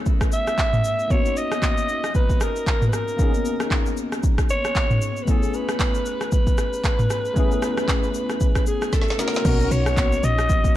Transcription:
Already playing: A3 B3 C#4 E4 A#4 B4
0.06 kick, shaker
0.21 kick, cross-stick, shaker
0.32 E5, shaker
0.47 cross-stick, shaker
0.58 kick, clap, shaker
0.73 mid tom, shaker
0.84 shaker
0.99 shaker
1.08 A#3 B3 C#4 C#5, kick, shaker
1.12 D#4 F#4
1.26 shaker
1.37 D#5, shaker
1.52 cross-stick, shaker
1.62 kick, clap, shaker
1.77 shaker
1.89 shaker
2.04 cross-stick, shaker
2.15 B4, kick, shaker
2.30 kick, shaker
2.41 A#4, cross-stick, shaker
2.56 shaker
2.67 A#4, kick, clap, shaker
2.82 mid tom, shaker
2.88 B4
2.93 A#4, cross-stick, shaker
3.08 shaker
3.16 A#3 B3 C#4, kick, shaker
3.21 D#4 G#4
3.34 shaker
3.45 shaker
3.60 cross-stick, shaker
3.71 kick, clap, shaker
3.86 shaker
3.97 shaker
4.12 cross-stick, shaker
4.23 kick, shaker
4.38 kick, cross-stick, shaker
4.49 C#5, shaker
4.65 cross-stick, shaker
4.75 kick, clap, shaker
4.91 mid tom, shaker
5.02 shaker
5.17 shaker
5.23 A3 B3 B4
5.28 C#4 E4 G#4 A4, kick, shaker
5.43 shaker
5.54 B4, shaker
5.69 cross-stick, shaker
5.80 kick, clap, shaker
5.95 shaker
6.06 shaker
6.21 cross-stick, shaker
6.32 B4, kick, shaker
6.47 kick, shaker
6.58 cross-stick, shaker
6.73 shaker
6.84 kick, clap, shaker
6.99 mid tom, shaker
7.10 cross-stick, shaker
7.25 shaker
7.34 A3 B3 C#4, kick, shaker
7.38 E4 G#4
7.51 shaker
7.62 cross-stick, shaker
7.77 cross-stick, shaker
7.88 kick, clap, shaker
8.03 shaker
8.14 shaker
8.30 cross-stick, shaker
8.40 kick, shaker
8.55 kick, cross-stick, shaker
8.66 G#4, shaker
8.82 cross-stick, shaker
8.93 A4, kick, snare, shaker
9.02 snare
9.08 snare, shaker
9.18 A3 B3 C#4 E4 F#4 A#4, snare, shaker
9.28 snare
9.34 snare, shaker
9.42 B1 A#3 B3 C#4, kick, crash, shaker
9.47 D#4 F#4
9.60 shaker
9.71 B1 C#5, shaker
9.86 cross-stick, shaker
9.97 kick, clap, shaker
10.12 shaker
10.23 A#1 D#5, shaker
10.39 cross-stick, shaker
10.49 kick, shaker
10.64 kick, shaker

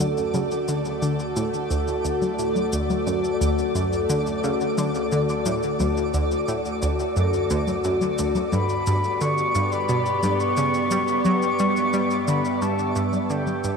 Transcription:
Already playing: D2 A3 F#4 A4 D5
0.00 D3, high conga, cabasa
0.17 cabasa
0.34 C#3, high conga, cabasa
0.51 cabasa
0.68 D3, cabasa
0.85 cabasa
1.02 D3, cabasa
1.20 cabasa
1.36 A2, cabasa
1.54 cabasa
1.71 D2, cabasa
1.88 cabasa
2.05 D2, cabasa
2.22 high conga, cabasa
2.39 A2, cabasa
2.56 high conga, cabasa
2.73 D2, cabasa
2.90 high conga, cabasa
3.07 F#2, high conga, cabasa
3.24 cabasa
3.41 D2, cabasa
3.59 cabasa
3.75 F#2, cabasa
3.93 cabasa
4.10 D3, cabasa
4.27 cabasa
4.44 C#3, cabasa
4.61 cabasa
4.78 D3, high conga, cabasa
4.95 cabasa
5.12 D3, cabasa
5.29 cabasa
5.46 A2, high conga, cabasa
5.63 cabasa
5.80 D2, high conga, cabasa
5.97 cabasa
6.14 D2, cabasa
6.31 cabasa
6.48 A2, cabasa
6.65 cabasa
6.82 D2, cabasa
6.99 cabasa
7.16 F#2, cabasa
7.33 cabasa
7.50 D2, cabasa
7.67 high conga, cabasa
7.84 F#2, cabasa
8.01 high conga, cabasa
8.18 D2, cabasa
8.35 high conga, cabasa
8.52 G2 B3 G4 D5 B5, high conga, cabasa
8.69 cabasa
8.87 G2, cabasa
9.04 cabasa
9.21 D3 C#6, cabasa
9.38 cabasa
9.55 G2, cabasa
9.72 B5, cabasa
9.89 B2, cabasa
10.06 cabasa
10.23 G2, high conga, cabasa
10.40 C#6, cabasa
10.57 C#3, cabasa
10.74 cabasa
10.91 G3, high conga, cabasa
11.08 cabasa
11.25 F#3 E5 C#6, high conga, cabasa
11.42 cabasa
11.59 G3, cabasa
11.77 cabasa
11.93 G3, cabasa
12.11 cabasa
12.28 D3 B5, cabasa
12.45 cabasa
12.62 G2 A5, cabasa
12.79 cabasa
12.96 G2, cabasa
13.13 high conga, cabasa
13.23 A5
13.30 D3 G5, cabasa
13.47 high conga, cabasa
13.64 G2, cabasa

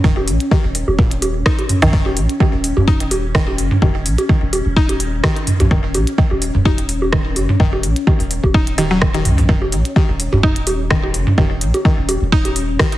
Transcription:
Already playing: C#4
0.04 D#1 D#3, kick
0.17 low bongo
0.28 A#1, open hi-hat
0.40 closed hi-hat
0.51 D#3, kick, low bongo
0.64 D#1
0.75 open hi-hat
0.88 D#1, low bongo
0.99 A#2, kick
1.11 closed hi-hat
1.22 open hi-hat, low bongo
1.46 D#4, kick, cross-stick
1.59 closed hi-hat, low bongo
1.69 mid tom, open hi-hat
1.82 A#1 D#3, closed hi-hat, mid tom
1.93 D#1 D#3, kick
2.06 low bongo
2.17 A#1, open hi-hat
2.29 closed hi-hat
2.40 D#3, kick, low bongo
2.53 D#1
2.64 open hi-hat
2.77 D#1, mid tom, low bongo
2.88 D#4, kick
3.00 closed hi-hat
3.11 open hi-hat, low bongo
3.35 D#3, kick, cross-stick
3.48 low bongo
3.58 F#1, open hi-hat
3.71 mid tom
3.82 D#1 D#3, kick, low bongo
4.06 A#1, open hi-hat
4.18 closed hi-hat, low bongo
4.29 D#3, kick
4.42 D#1
4.53 open hi-hat, low bongo
4.66 D#1
4.77 D#4, kick
4.89 closed hi-hat, low bongo
5.00 open hi-hat
5.24 D#3, kick, cross-stick, low bongo
5.36 closed hi-hat
5.47 mid tom, open hi-hat
5.60 A#1, closed hi-hat, mid tom, low bongo
5.71 D#1 D#3, kick
5.94 A#1, open hi-hat, low bongo
6.07 closed hi-hat
6.18 D#3, kick
6.31 D#1, low bongo
6.42 open hi-hat
6.55 D#1, mid tom
6.65 D#4, kick, low bongo
6.78 closed hi-hat
6.89 open hi-hat
7.02 low bongo
7.13 D#3, kick, cross-stick
7.36 F#1, open hi-hat, low bongo
7.49 mid tom
7.60 D#1 D#3, kick
7.73 low bongo
7.83 A#1, open hi-hat
7.96 closed hi-hat
8.07 D#3, kick, low bongo
8.20 D#1, open hi-hat
8.31 open hi-hat
8.44 D#1, kick, low bongo
8.54 D#4, kick
8.67 closed hi-hat
8.78 D#3, open hi-hat, low bongo
8.91 F#3
9.02 D#3, kick, cross-stick
9.14 D#3, closed hi-hat, low bongo
9.25 C#2, mid tom, open hi-hat
9.38 A#1, mid tom, open hi-hat
9.49 D#1 D#3 C#4, kick
9.62 low bongo
9.72 A#1, open hi-hat
9.85 closed hi-hat
9.96 D#3, kick, low bongo
10.09 D#1
10.20 open hi-hat
10.33 D#1, mid tom, low bongo
10.43 D#4, kick
10.56 closed hi-hat
10.67 open hi-hat, low bongo
10.91 D#3, kick, cross-stick
11.03 low bongo
11.14 F#1, open hi-hat
11.27 mid tom
11.38 D#1 D#3, kick, low bongo
11.61 A#1, open hi-hat
11.74 closed hi-hat, low bongo
11.85 D#3, kick
11.98 D#1
12.09 open hi-hat, low bongo
12.22 D#1
12.32 D#4, kick
12.45 closed hi-hat, low bongo
12.56 open hi-hat
12.79 D#3, kick, cross-stick, low bongo
12.92 closed hi-hat

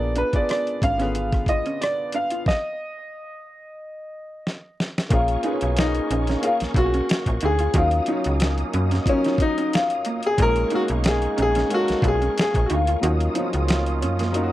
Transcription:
Already playing: A#1 B3 D4 F4 G#4 A#4 D5
0.16 D4 B4, closed hi-hat
0.32 G#1 B3 D4 F4 G#4 D5, kick, closed hi-hat
0.36 B4
0.49 D5, muted clean electric guitar stroke, cross-stick, closed hi-hat
0.67 closed hi-hat
0.82 G#1 C#4 F5, kick, closed hi-hat
0.97 D3 B3 C#4 F4 G#4, closed hi-hat
1.02 B4, cross-stick
1.15 muted clean electric guitar stroke, closed hi-hat
1.32 kick, cross-stick, closed hi-hat
1.46 F4 D#5, kick, closed hi-hat
1.66 C#4, closed hi-hat
1.81 D5, muted clean electric guitar stroke, cross-stick, closed hi-hat
2.12 D4 F5, closed hi-hat
2.30 F4, closed hi-hat
2.46 D#5, kick, snare
4.47 snare
4.80 snare
4.98 snare
5.09 A#1 A#3 C#4 F4 G#4 A#4 F5 G#5 C#6, kick, closed hi-hat
5.13 A#4
5.28 closed hi-hat
5.42 A#3 C#4 D#4 F4 G#4, closed hi-hat
5.47 B4
5.53 C#5
5.61 B1, closed hi-hat
5.77 D#4, muted clean electric guitar stroke, snare, closed hi-hat
5.95 closed hi-hat
6.11 A#1 C#4, closed hi-hat
6.27 C#4, snare, closed hi-hat
6.42 A#3 C#4 F4 G#4 A#4 F5, muted clean electric guitar stroke, closed hi-hat
6.60 B1, snare, closed hi-hat
6.74 B1 F4 F#4, kick, closed hi-hat
6.94 C#4, closed hi-hat
7.09 muted clean electric guitar stroke, snare, closed hi-hat
7.26 A#1, kick, closed hi-hat
7.41 D2 D#4, closed hi-hat
7.45 G#4
7.59 F4, closed hi-hat
7.73 D#2 F#3 A#3 C#4 D#4 F4 F#4 C#5 D#5 D#6, kick, closed hi-hat
7.78 F4 A#4
7.91 closed hi-hat
8.06 F#3 C#4 D#4, closed hi-hat
8.10 D#4 F4 C#5
8.24 C#2, closed hi-hat
8.40 muted clean electric guitar stroke, snare, closed hi-hat
8.58 closed hi-hat
8.73 F#2 C#4, closed hi-hat
8.91 C#4, snare, closed hi-hat
9.06 F#3 C#4 D#4 F4, kick, closed hi-hat
9.10 A#4
9.24 D#4, snare, closed hi-hat
9.38 D#4, muted clean electric guitar stroke, kick, closed hi-hat
9.58 C#4, closed hi-hat
9.73 F4, snare, closed hi-hat
9.90 closed hi-hat
10.05 A#3, closed hi-hat
10.23 G#4, closed hi-hat
10.37 A#1 G#3 A#3 C#4 D#4 F4 A#4 F5 G#5 C#6, kick, closed hi-hat
10.42 G#4 A#4
10.56 closed hi-hat
10.70 G#3 A#3 C#4 D#4 F5, closed hi-hat
10.75 F#4 A#4
10.88 B1, closed hi-hat
11.04 muted clean electric guitar stroke, snare, closed hi-hat
11.08 G#4
11.22 closed hi-hat
11.38 A#1 C#4, closed hi-hat
11.42 G#4
11.55 C#4, snare, closed hi-hat
11.69 G#3 A#3 C#4 F5, muted clean electric guitar stroke, closed hi-hat
11.74 F#4 A4
11.80 A#4
11.88 B1, snare, closed hi-hat
12.02 B1 F4, kick, closed hi-hat
12.08 G#4
12.22 C#4, closed hi-hat
12.38 G#4, muted clean electric guitar stroke, snare, closed hi-hat
12.54 A#1, kick, closed hi-hat
12.66 F#4, closed hi-hat
12.70 D2 D#4 F4
12.87 F4, closed hi-hat
13.01 D#2 F#3 A#3 C#4 D#4 F4 F#4 C#5 D#5 F5 D#6, closed hi-hat
13.05 F4
13.20 closed hi-hat
13.34 F3 A#3 C#4 D#4, closed hi-hat
13.38 F#3 F4
13.53 C#2, closed hi-hat
13.68 muted clean electric guitar stroke, snare, closed hi-hat
13.86 closed hi-hat
14.02 F#2 C#4, closed hi-hat
14.19 A#3, snare, closed hi-hat
14.32 F#3 A#3 C#4 D#4, closed hi-hat
14.37 F4
14.43 F#4

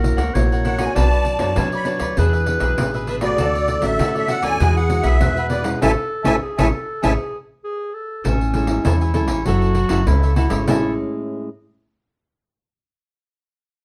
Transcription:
Already playing: A#1 A#3 A#4
0.03 E4 F#4 C#5, muted cavaquinho stroke, pandeiro
0.17 C#2 A#4 C#5 F#5, pandeiro
0.34 A#1 A#3 E4 F#4 C#5, pandeiro
0.52 A#4 C#5 F#5, pandeiro
0.64 E4 A#4 C#5 F#5, pandeiro
0.78 D4 F#4 A#4 C#5 F#5 G#5, pandeiro
0.95 B1 B3 D4 B4 C#5 D5 A5, pandeiro
1.11 B4 C#5 D5, pandeiro
1.25 muted cavaquinho stroke, pandeiro
1.39 F#2 D4 F#4 C#5 A5, pandeiro
1.56 B2 F#3 D4 B4 C#5 D5, pandeiro
1.72 B4 C#5 D5 B5, pandeiro
1.85 D4 F#4 B4 C#5 D5, pandeiro
1.99 D2 B4 C#5 D5, pandeiro
2.17 E2 E3 B3 D4 G#4 B4 E5, pandeiro
2.33 G#4 B4 E5, pandeiro
2.46 B3 D4 G#4, muted cavaquinho stroke, pandeiro
2.60 B1 G#4 B4 E5, pandeiro
2.78 A1 B2 B3 D4 G#4, pandeiro
2.94 G#4 B4 E5, pandeiro
3.07 D4 G#4 B4 E5, pandeiro
3.21 A3 F#4 G#4 B4 D5 E5, pandeiro
3.33 G#4
3.38 D2 D3 F#4 A4 C#5 D5, pandeiro
3.55 A4 C#5 D5, pandeiro
3.68 muted cavaquinho stroke, pandeiro
3.82 A1 A3 C#4 F#4 E5, pandeiro
3.99 A2 D3 F#4 A4 C#5 D5, pandeiro
4.15 A4 C#5 D5 E5, pandeiro
4.28 A3 C#4 F#4 A4 C#5 D5 F#5, pandeiro
4.43 D#2 A4 C#5 D5 G#5, pandeiro
4.60 E2 E3 G#3 B3 E4 F#4 G#4 B4 F#5, pandeiro
4.76 G#4 B4 F#5, pandeiro
4.90 G#3 B3 F#4, muted cavaquinho stroke, pandeiro
5.03 B1 G#4 B4 E5 F#5, pandeiro
5.21 E2 B2 G#3 B3 F#4 B4, pandeiro
5.37 G#4 B4 F#5, pandeiro
5.50 E4 G#4 B4 D5 F#5, pandeiro
5.64 G#3 C#4 E4 G#4 B4 F#5, pandeiro
5.81 A1 A3 C#4 E4 A4 C#5 E5 G#5 A5, pandeiro
6.24 A1 A3 C#4 E4 A4 C#5 E5 G#5 A5, pandeiro
6.42 G#4
6.58 A1 A3 C#4 E4 A4 C#5 E5 G#5 A5, pandeiro
6.72 A4
7.03 A1 A3 C#4 E4 G#4 A4 C#5 E5 G#5 A5, pandeiro
7.64 G#4
7.94 A4
8.24 A1 A2 C#4 A4 C#5 E5 G#5, pandeiro
8.41 pandeiro
8.54 G#3 C#4 E4 A4 C#5 E5 G#5, pandeiro
8.67 G#3 C#4 E4, pandeiro
8.85 E2 E3 E4 A4 C#5 E5 G#5, pandeiro
9.01 C#5 E5 G#5, pandeiro
9.14 G#3 C#4 E4 A4 C#5 E5 G#5, pandeiro
9.28 A1 C#5 E5 G#5, pandeiro
9.46 F#1 F#3 C#4 E4 F#4 A4 C#5 E5, pandeiro
9.62 pandeiro
9.75 F#4 A4 C#5 E5, pandeiro
9.89 F#1 C#4 E4 F#4 A4 C#5 E5, pandeiro
10.07 C#2 C#3 C#4 E4 A4, pandeiro
10.23 A4 C#5 E5, pandeiro
10.36 C#4 E4 F#4 A4 C#5 E5, pandeiro
10.50 G#1 G#3 C#4 E4 A4 C#5 E5, pandeiro
10.67 A1 A2 G#3 C#4 E4 A4 C#5 E5 G#5, pandeiro

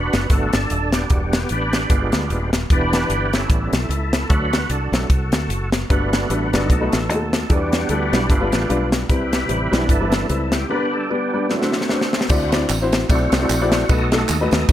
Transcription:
Already playing: E1 D4 F#4 B4
0.13 F#1, snare, closed hi-hat
0.30 G1 A3 B3 D4 F#4 A4, kick, closed hi-hat
0.53 G1, snare, closed hi-hat
0.70 D#1, closed hi-hat
0.93 B3 D4 G4, snare, closed hi-hat
1.10 E1 G3 D4 F#4, kick, closed hi-hat
1.33 snare, closed hi-hat
1.49 A1 D4 G4 B4, closed hi-hat
1.73 snare, closed hi-hat
1.90 G1 G#3 B3 F4, kick, closed hi-hat
2.12 D2, snare, closed hi-hat
2.30 D#1, closed hi-hat
2.53 snare, closed hi-hat
2.70 E1 E3 B3 D4 G4 B4, kick, closed hi-hat
2.93 snare, closed hi-hat
3.09 G1, closed hi-hat
3.33 C#4 E4 A4, snare, closed hi-hat
3.49 A1 G3 B3 C#4, kick, closed hi-hat
3.73 B1, snare, closed hi-hat
3.89 C#2, closed hi-hat
4.13 snare, closed hi-hat
4.29 D2 F#3 A3 D4 F#4 B4, kick, closed hi-hat
4.53 snare, closed hi-hat
4.70 C2 D4 F#4 A4, closed hi-hat
4.92 B1 F#3 A3 D4, snare, closed hi-hat
5.10 C2, kick, closed hi-hat
5.32 D2, snare, closed hi-hat
5.49 F#1, closed hi-hat
5.72 snare, closed hi-hat
5.90 G1 G2 G3 A3 B3 D4 F#4 B4, kick, closed hi-hat
6.13 snare, closed hi-hat
6.30 A1 G3 D4 F#4 B4, closed hi-hat
6.53 G1 G3 D4 D#4 F#4 A4 B4, snare, closed hi-hat
6.70 B1 B2 A3 D#4 F#4, kick, closed hi-hat
6.81 A3 D#4 F#4 B4
6.92 A1, snare, closed hi-hat
7.09 D#2 A3 D#4 F#4 G#4, closed hi-hat
7.15 A4
7.33 snare, closed hi-hat
7.49 E2 E3 G3 B3 D4 E4 F#4 G4 A4, kick, closed hi-hat
7.54 B4
7.73 snare, closed hi-hat
7.89 D2 G3 D4 E4 G4 A4 B4, closed hi-hat
8.12 B1 G3 D4 E4 G4, snare, closed hi-hat
8.29 G1 G2 A3 B3 F4, kick, closed hi-hat
8.40 G3 D4 F4 B4
8.52 A1, snare, closed hi-hat
8.69 B1 G3 D4 F4 B4, closed hi-hat
8.92 snare, closed hi-hat
9.09 C2 C3 G3 C4 E4 G4 B4, kick, closed hi-hat
9.33 snare, closed hi-hat
9.49 A1 G3 C4 E4 B4, closed hi-hat
9.71 B1 E3 G3 B3 C4 D4 E4 G4, snare, closed hi-hat
9.89 G1 E4 A4, kick, closed hi-hat
10.00 G3 C4 E4 B4
10.12 snare, closed hi-hat
10.29 C#2 G3 C4 E4 B4, closed hi-hat
10.52 G4, snare, closed hi-hat
10.69 D3 G3 B3 D4 G4 A#4 B4
10.74 B4
10.94 A4
11.10 G3 B3 D4 G4 B4
11.33 G3 B3 D4 B4
11.50 D3 F#3 A3 C4 E4 F#4, snare
11.62 A3 D4 F#4 C5, snare
11.72 snare
11.81 snare
11.89 A3 D4 F#4 B4, snare
11.95 C5
12.01 snare
12.13 snare
12.21 snare
12.29 D2 D3 C4 E4 F#4 D5, kick, crash, tambourine
12.52 C4 E4 F#4 D5, snare, ride, tambourine
12.69 A1, clap, ride, tambourine
12.82 C4 E4 F#4 C5
12.92 snare, ride, tambourine
13.09 B1 A3 C4 E4 F#4 D5, kick, ride, tambourine
13.32 C2, snare, ride, tambourine
13.41 C4 E4 F#4 D5
13.49 A#1, clap, ride, tambourine
13.61 C4 E4 F#4 D5
13.72 snare, ride, tambourine
13.89 B1 B2 A3 D#4 F#4 A4 B4 D#5, kick, ride, tambourine
14.12 A3 D#4 F#4 A4, snare, ride, tambourine
14.28 D#2, clap, ride, tambourine
14.41 A3 D#4 F#4 B4
14.51 D#2, snare, ride, tambourine
14.69 E2, kick, ride, tambourine

